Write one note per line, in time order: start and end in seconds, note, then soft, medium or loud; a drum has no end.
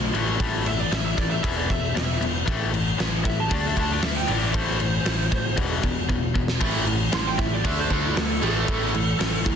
0.00 0.10 B1 medium
0.00 0.11 D3 medium
0.00 0.11 A3 medium
0.14 0.36 A1 medium
0.14 0.38 A2 medium
0.14 0.38 E3 loud
0.14 0.39 A3 medium
0.14 crash medium
0.40 0.84 A1 medium
0.40 0.64 A2 loud
0.40 0.64 E3 medium
0.40 0.65 A3 loud
0.40 kick loud
0.40 crash medium
0.66 0.89 A2 medium
0.66 0.89 E3 medium
0.66 0.80 E5 medium
0.66 crash medium
0.80 0.92 D5 medium
0.91 1.13 A1 medium
0.91 1.15 A2 medium
0.91 1.15 E3 medium
0.91 1.04 E5 medium
0.91 snare loud
0.91 crash medium
1.06 1.18 E5 medium
1.18 1.40 A1 medium
1.18 1.41 A2 medium
1.18 1.41 E3 medium
1.18 1.30 D5 loud
1.18 kick medium
1.18 snare soft
1.18 crash medium
1.31 1.43 E5 medium
1.43 1.66 E1 medium
1.43 1.67 E2 medium
1.43 1.68 B2 medium
1.43 1.68 E3 loud
1.43 1.56 E5 medium
1.43 kick loud
1.43 crash medium
1.56 1.69 D5 medium
1.69 1.92 E1 medium
1.69 1.92 E2 medium
1.69 1.93 B2 medium
1.69 1.95 E5 medium
1.69 kick medium
1.69 crash medium
1.95 2.17 E1 medium
1.95 2.18 E2 medium
1.95 2.18 B2 medium
1.95 2.21 E5 loud
1.95 snare loud
1.95 crash medium
2.21 2.43 E1 medium
2.21 2.44 E2 medium
2.21 2.44 B2 medium
2.21 crash medium
2.46 2.91 A1 medium
2.46 2.71 A2 medium
2.46 2.71 E3 medium
2.46 2.71 A3 loud
2.46 kick loud
2.46 crash medium
2.72 2.96 A2 medium
2.72 2.96 E3 medium
2.72 crash medium
2.98 3.21 A1 medium
2.98 3.22 A2 medium
2.98 3.22 E3 medium
2.98 snare loud
2.98 crash medium
3.24 3.47 A1 medium
3.24 3.47 A2 medium
3.24 3.48 E3 medium
3.24 3.38 E5 loud
3.24 kick medium
3.24 crash medium
3.40 3.51 A5 medium
3.49 3.73 D2 medium
3.49 3.74 D3 medium
3.49 3.74 A3 medium
3.49 3.75 D4 loud
3.49 3.64 D5 medium
3.49 kick loud
3.49 crash medium
3.67 3.78 E5 medium
3.76 3.99 D2 medium
3.76 4.00 D3 medium
3.76 4.01 A3 medium
3.76 4.01 D4 medium
3.76 3.91 A5 loud
3.76 kick medium
3.76 crash medium
3.92 4.03 D5 loud
4.02 4.24 D2 medium
4.02 4.25 D3 medium
4.02 4.25 A3 medium
4.02 4.16 E5 loud
4.02 snare loud
4.02 crash medium
4.17 4.28 G5 medium
4.27 4.51 A1 medium
4.27 4.52 A2 medium
4.27 4.52 E3 medium
4.27 4.53 A3 loud
4.27 4.54 D5 medium
4.27 crash medium
4.53 4.98 A1 medium
4.53 4.78 A2 medium
4.53 4.78 E3 medium
4.53 4.79 A3 medium
4.53 5.55 C5 loud
4.53 kick loud
4.53 crash medium
4.80 5.03 A2 medium
4.80 5.03 E3 medium
4.80 crash medium
5.05 5.28 A1 medium
5.05 5.29 A2 medium
5.05 5.29 E3 medium
5.05 snare loud
5.05 crash medium
5.31 5.54 A1 medium
5.31 5.55 A2 medium
5.31 5.55 E3 medium
5.31 kick medium
5.31 snare soft
5.31 crash medium
5.56 5.79 E1 medium
5.56 5.81 E2 medium
5.56 5.81 B2 medium
5.56 5.82 E3 medium
5.56 kick loud
5.56 crash medium
5.83 6.05 E1 medium
5.83 6.06 E2 medium
5.83 6.06 B2 medium
5.83 kick medium
5.83 crash medium
6.09 6.31 E1 medium
6.09 6.32 E2 medium
6.09 6.32 B2 medium
6.09 kick medium
6.34 6.57 E1 medium
6.34 6.58 E2 medium
6.34 6.58 B2 medium
6.34 kick medium
6.48 snare medium
6.60 7.05 A1 medium
6.60 6.85 A2 medium
6.60 6.85 E3 medium
6.60 6.85 A3 loud
6.60 kick loud
6.60 crash medium
6.86 7.10 A2 medium
6.86 7.10 E3 medium
6.86 crash medium
7.12 7.35 A1 medium
7.12 7.36 A2 medium
7.12 7.36 E3 medium
7.12 7.26 C6 loud
7.12 snare loud
7.12 crash medium
7.27 7.39 G5 medium
7.38 7.61 A1 medium
7.38 7.62 A2 medium
7.38 7.62 E3 medium
7.38 7.51 E5 medium
7.38 kick medium
7.38 snare soft
7.38 crash medium
7.54 7.66 D5 medium
7.64 7.87 D2 medium
7.64 7.88 D3 loud
7.64 7.89 A3 loud
7.64 7.89 D4 loud
7.64 7.78 E5 medium
7.64 kick loud
7.64 crash medium
7.79 7.92 C5 medium
7.90 8.12 D2 medium
7.90 8.14 D3 medium
7.90 8.15 A3 medium
7.90 8.15 D4 loud
7.90 8.04 A4 loud
7.90 kick medium
7.90 crash medium
8.05 8.17 E4 medium
8.15 8.38 D2 loud
8.15 8.39 D3 medium
8.15 8.39 A3 medium
8.15 8.42 A4 medium
8.15 snare loud
8.15 crash medium
8.42 8.64 A1 medium
8.42 8.66 A2 medium
8.42 8.66 E3 medium
8.42 8.67 A3 medium
8.42 9.43 A4 loud
8.42 crash medium
8.68 9.12 A1 medium
8.68 8.92 A2 medium
8.68 8.92 E3 medium
8.68 8.92 A3 loud
8.68 kick loud
8.68 crash medium
8.93 9.17 A2 medium
8.93 9.17 E3 medium
8.93 crash medium
9.19 9.42 A1 medium
9.19 9.43 A2 medium
9.19 9.43 E3 medium
9.19 snare loud
9.19 crash medium
9.44 9.56 D2 medium
9.44 9.56 A2 medium
9.44 9.56 E3 medium
9.44 kick medium
9.44 crash medium